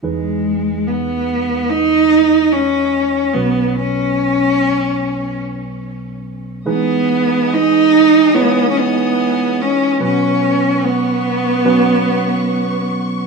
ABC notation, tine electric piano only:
X:1
M:4/4
L:1/8
Q:1/4=72
K:E
V:1 name="Tine electric piano"
[G,DGB]8 | [F,B,CB]8 | [G,DGB]4 [G,DEc]4 | [F,B,CB]4 [F,B,CB]4 |]
V:2 name="Tine electric piano" clef=bass
[E,,E,]8 | [B,,,B,,]8 | E,3 z4 z | B,,3 z4 z |]